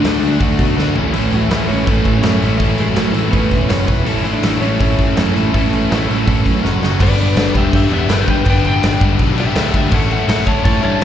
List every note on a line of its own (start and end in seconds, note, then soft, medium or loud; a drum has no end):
0.00 0.19 D2 medium
0.00 0.93 D3 medium
0.00 0.18 D3 medium
0.00 1.15 A3 medium
0.00 0.19 A3 medium
0.00 0.36 D4 loud
0.00 0.94 D4 medium
0.00 0.19 D4 medium
0.00 0.95 F#4 loud
0.00 0.20 F#4 medium
0.00 0.36 D5 medium
0.04 0.22 D3 medium
0.04 0.23 D4 medium
0.04 snare loud
0.04 open hi-hat medium
0.19 0.37 D2 medium
0.19 0.38 D3 medium
0.19 0.40 A3 medium
0.19 0.39 D4 medium
0.19 0.40 F#4 medium
0.19 open hi-hat medium
0.24 0.41 D4 medium
0.39 0.55 D2 medium
0.39 0.75 D3 medium
0.39 0.76 A3 loud
0.39 0.76 D4 loud
0.39 0.77 F#4 loud
0.39 kick loud
0.39 open hi-hat medium
0.59 0.74 B2 medium
0.59 kick medium
0.59 open hi-hat medium
0.76 0.92 D2 medium
0.76 0.93 D3 medium
0.76 0.94 A3 medium
0.76 0.94 D4 medium
0.76 0.94 F#4 medium
0.76 snare medium
0.94 1.10 A1 medium
0.94 1.11 A2 medium
0.94 1.11 E3 medium
0.94 1.12 A3 loud
0.94 1.12 C#4 medium
0.94 1.12 E4 medium
0.94 floor tom medium
1.11 1.28 A1 medium
1.11 1.49 A2 loud
1.11 1.49 E3 medium
1.11 1.49 A3 loud
1.11 1.50 C#4 loud
1.11 1.50 E4 loud
1.11 open hi-hat medium
1.32 1.47 A1 medium
1.32 1.41 F#3 medium
1.32 1.43 F#4 medium
1.32 open hi-hat medium
1.43 1.68 E3 medium
1.43 1.68 E4 medium
1.50 1.66 A1 medium
1.50 1.66 A2 medium
1.50 1.66 E3 medium
1.50 1.67 A3 medium
1.50 1.67 C#4 medium
1.50 1.68 E4 medium
1.50 snare loud
1.50 open hi-hat medium
1.67 1.84 A1 medium
1.67 1.85 A2 medium
1.67 1.85 E3 medium
1.67 1.86 A3 medium
1.67 1.86 C#4 medium
1.67 1.87 E4 medium
1.67 1.85 C#5 medium
1.67 open hi-hat medium
1.72 1.89 C#4 medium
1.86 2.02 A1 medium
1.86 2.21 A2 loud
1.86 2.21 E3 loud
1.86 2.21 A3 loud
1.86 2.22 C#4 loud
1.86 2.22 E4 loud
1.86 2.13 A4 medium
1.86 kick loud
1.86 open hi-hat medium
1.92 2.17 A3 medium
2.05 2.20 A1 medium
2.05 kick medium
2.05 open hi-hat medium
2.17 2.42 C#4 medium
2.17 2.41 C#5 medium
2.22 2.39 F#2 medium
2.22 2.39 A2 medium
2.22 2.39 E3 medium
2.22 2.39 A3 medium
2.22 2.39 C#4 medium
2.22 2.40 E4 medium
2.22 snare loud
2.22 open hi-hat medium
2.40 2.57 A1 medium
2.40 2.55 A2 medium
2.40 2.56 E3 medium
2.40 2.56 A3 medium
2.40 2.56 C#4 medium
2.40 2.57 E4 medium
2.40 open hi-hat medium
2.56 2.92 A2 loud
2.56 2.93 E3 medium
2.56 2.93 A3 loud
2.56 2.93 C#4 loud
2.56 2.94 E4 loud
2.56 kick loud
2.56 open hi-hat medium
2.60 2.75 A1 medium
2.60 3.70 C#4 loud
2.78 2.94 A1 medium
2.78 2.88 G#3 medium
2.78 2.88 G#4 medium
2.78 open hi-hat medium
2.88 3.14 F#3 medium
2.88 3.16 F#4 loud
2.93 3.12 A1 medium
2.93 3.13 A2 medium
2.93 3.13 E3 medium
2.93 3.13 A3 medium
2.93 3.14 C#4 medium
2.93 3.14 E4 medium
2.93 snare loud
2.93 open hi-hat medium
3.12 3.30 A1 medium
3.12 3.30 A2 medium
3.12 3.30 E3 medium
3.12 3.31 A3 medium
3.12 3.31 C#4 medium
3.12 3.32 E4 medium
3.12 3.31 E4 medium
3.12 open hi-hat medium
3.16 3.33 E3 medium
3.29 3.68 A2 medium
3.29 3.68 E3 loud
3.29 3.68 A3 loud
3.29 3.60 B3 medium
3.29 3.68 C#4 loud
3.29 3.68 E4 loud
3.29 kick loud
3.33 3.49 A1 medium
3.33 3.60 B4 medium
3.33 open hi-hat medium
3.51 3.67 E1 medium
3.51 kick medium
3.51 open hi-hat medium
3.57 3.85 C#4 medium
3.62 3.87 C#5 medium
3.69 3.85 F#1 medium
3.69 3.86 F#2 medium
3.69 3.86 C#3 loud
3.69 3.86 F#3 medium
3.69 3.86 C#4 medium
3.69 3.87 F#4 medium
3.69 3.87 C#5 loud
3.69 snare loud
3.69 open hi-hat medium
3.86 4.04 E1 medium
3.86 4.05 E2 medium
3.86 4.04 B2 loud
3.86 4.06 E3 loud
3.86 4.05 B3 loud
3.86 4.06 E4 medium
3.86 4.05 B4 loud
3.86 kick loud
3.86 open hi-hat medium
4.05 4.21 A1 medium
4.05 4.41 A2 loud
4.05 4.42 E3 loud
4.05 4.42 A3 loud
4.05 4.43 C#4 loud
4.05 4.43 E4 loud
4.05 4.43 A4 loud
4.05 open hi-hat medium
4.24 4.40 A1 medium
4.24 4.33 E3 medium
4.24 4.33 E4 medium
4.24 open hi-hat medium
4.33 4.59 D4 loud
4.33 4.59 D5 medium
4.42 4.59 A1 medium
4.42 4.60 A2 medium
4.42 4.61 E3 medium
4.42 4.61 A3 medium
4.42 4.63 C#4 medium
4.42 4.62 E4 medium
4.42 4.63 A4 loud
4.42 snare loud
4.42 open hi-hat medium
4.60 4.76 A1 medium
4.60 4.78 A2 medium
4.60 4.79 E3 medium
4.60 4.79 A3 medium
4.60 4.80 C#4 medium
4.60 4.79 C#4 medium
4.60 4.79 E4 medium
4.60 4.80 A4 loud
4.60 4.78 C#5 medium
4.60 open hi-hat medium
4.79 4.95 A1 medium
4.79 5.15 A2 loud
4.79 5.16 E3 loud
4.79 5.16 A3 loud
4.79 5.17 C#4 loud
4.79 6.60 C#4 medium
4.79 5.17 E4 loud
4.79 5.17 A4 loud
4.79 6.59 C#5 medium
4.79 kick loud
4.79 open hi-hat medium
4.98 5.14 A1 medium
4.98 kick medium
4.98 open hi-hat medium
5.16 5.33 F#2 loud
5.16 5.34 A2 medium
5.16 5.34 E3 medium
5.16 5.34 A3 medium
5.16 5.35 C#4 medium
5.16 5.35 E4 medium
5.16 5.35 A4 medium
5.16 snare loud
5.16 open hi-hat medium
5.35 5.51 A1 medium
5.35 5.52 A2 medium
5.35 5.52 E3 medium
5.35 5.53 A3 medium
5.35 5.53 C#4 medium
5.35 5.53 E4 loud
5.35 5.54 A4 loud
5.35 open hi-hat medium
5.53 5.69 A1 medium
5.53 5.89 A2 loud
5.53 5.89 E3 loud
5.53 5.90 A3 loud
5.53 5.90 C#4 loud
5.53 5.90 E4 loud
5.53 5.91 A4 loud
5.53 kick loud
5.53 open hi-hat medium
5.72 5.87 A1 medium
5.72 open hi-hat medium
5.90 6.06 A1 medium
5.90 6.07 A2 medium
5.90 6.08 E3 medium
5.90 6.08 A3 medium
5.90 6.08 C#4 medium
5.90 6.09 E4 medium
5.90 6.09 A4 loud
5.90 snare loud
5.90 open hi-hat medium
6.08 6.25 A1 medium
6.08 6.25 A2 medium
6.08 6.25 E3 medium
6.08 6.26 A3 medium
6.08 6.26 C#4 medium
6.08 6.27 E4 medium
6.08 6.27 A4 medium
6.08 open hi-hat medium
6.26 6.42 A1 medium
6.26 6.62 A2 loud
6.26 6.62 E3 loud
6.26 6.63 A3 loud
6.26 6.61 C#4 loud
6.26 6.63 E4 loud
6.26 6.63 A4 loud
6.26 kick loud
6.26 open hi-hat medium
6.46 6.61 F#2 medium
6.46 kick medium
6.46 open hi-hat medium
6.62 6.79 F#1 medium
6.62 6.81 F#2 loud
6.62 6.81 C#3 medium
6.62 6.80 F#3 medium
6.62 6.80 C#4 medium
6.62 6.80 F#4 medium
6.62 6.81 C#5 loud
6.62 snare medium
6.81 6.97 F#1 medium
6.81 7.00 F#2 medium
6.81 7.00 C#3 medium
6.81 6.99 F#3 medium
6.81 6.99 C#4 medium
6.81 6.99 F#4 medium
6.81 6.99 C#5 loud
6.81 snare medium
6.99 7.27 G1 medium
6.99 7.90 G2 medium
6.99 7.90 D3 loud
6.99 7.90 G3 loud
6.99 7.90 B3 medium
6.99 7.89 D4 loud
6.99 7.19 B4 medium
6.99 7.19 D5 loud
6.99 kick loud
6.99 crash loud
6.99 crash medium
7.19 7.37 B4 medium
7.19 7.38 D5 medium
7.19 crash medium
7.36 7.49 G1 loud
7.36 7.55 B4 medium
7.36 7.56 D5 medium
7.36 snare loud
7.36 crash medium
7.55 7.68 E1 medium
7.55 8.45 G2 medium
7.55 8.45 D3 medium
7.55 8.46 G3 medium
7.55 8.46 B3 medium
7.55 8.45 D4 medium
7.55 7.73 G4 medium
7.55 7.74 E5 medium
7.55 kick medium
7.55 crash medium
7.73 7.86 G2 medium
7.73 7.91 G4 medium
7.73 7.92 E5 medium
7.73 kick loud
7.73 crash medium
7.90 8.04 E2 medium
7.90 8.06 G2 medium
7.90 8.06 D3 medium
7.90 8.07 G3 medium
7.90 8.08 B3 medium
7.90 8.08 D4 medium
7.90 8.11 G4 medium
7.90 8.12 E5 medium
7.90 crash medium
8.07 8.22 G1 loud
8.07 8.44 G2 medium
8.07 8.44 D3 medium
8.07 8.45 G3 medium
8.07 8.45 B3 medium
8.07 8.45 D4 medium
8.07 8.29 B4 medium
8.07 snare loud
8.07 crash medium
8.12 8.29 G5 medium
8.28 8.41 G1 medium
8.28 8.46 B4 medium
8.28 8.47 G5 medium
8.28 kick medium
8.28 crash medium
8.45 8.59 G1 medium
8.45 9.36 G2 medium
8.45 9.36 D3 loud
8.45 9.36 G3 loud
8.45 9.36 B3 loud
8.45 9.35 D4 loud
8.45 kick loud
8.45 crash medium
8.50 8.65 B4 medium
8.50 8.66 G5 medium
8.64 8.77 G1 loud
8.64 9.01 G5 medium
8.64 crash medium
8.82 8.96 G1 loud
8.82 snare loud
8.82 crash medium
9.00 9.14 G1 medium
9.00 9.91 G2 medium
9.00 9.92 D3 medium
9.00 9.92 G3 medium
9.00 9.91 B3 medium
9.00 9.91 D4 medium
9.00 kick medium
9.00 crash medium
9.19 9.46 B1 loud
9.19 kick loud
9.19 crash medium
9.36 9.54 G2 medium
9.36 9.54 D3 medium
9.36 9.55 G3 medium
9.36 9.55 B3 medium
9.36 9.54 D4 medium
9.36 9.56 G4 loud
9.36 9.57 E5 loud
9.36 crash medium
9.55 9.69 D2 loud
9.55 9.89 G2 medium
9.55 9.91 D3 medium
9.55 9.91 G3 medium
9.55 9.91 B3 medium
9.55 9.92 D4 medium
9.55 9.74 G4 medium
9.55 9.75 E5 medium
9.55 snare loud
9.55 crash loud
9.74 9.87 D2 loud
9.74 9.93 G4 medium
9.74 9.93 E5 medium
9.74 kick medium
9.74 crash medium
9.90 10.18 A1 loud
9.90 10.81 A2 loud
9.90 10.82 E3 loud
9.90 10.82 A3 loud
9.90 10.81 C#4 loud
9.90 10.81 E4 loud
9.90 kick loud
9.90 crash medium
9.94 10.10 A4 medium
9.94 10.11 F#5 medium
10.11 10.27 A4 medium
10.11 10.28 F#5 medium
10.11 crash medium
10.28 10.42 A1 loud
10.28 10.46 A4 medium
10.28 10.47 F#5 medium
10.28 snare loud
10.28 crash loud
10.46 10.60 G1 medium
10.46 11.04 A2 medium
10.46 11.04 E3 medium
10.46 11.04 A3 medium
10.46 11.04 C#4 medium
10.46 11.04 E4 medium
10.46 10.63 C#5 medium
10.46 10.63 A5 loud
10.46 kick medium
10.46 crash medium
10.64 10.79 A2 loud
10.64 10.82 C#5 medium
10.64 10.83 A5 medium
10.64 kick loud
10.64 crash medium
10.82 10.97 G2 medium
10.82 10.99 A2 medium
10.82 11.00 E3 medium
10.82 11.00 A3 medium
10.82 11.00 C#4 medium
10.82 11.00 E4 medium
10.82 11.00 C#5 medium
10.82 11.01 A5 medium
10.82 crash medium
11.00 11.04 A2 medium
11.00 11.04 E3 medium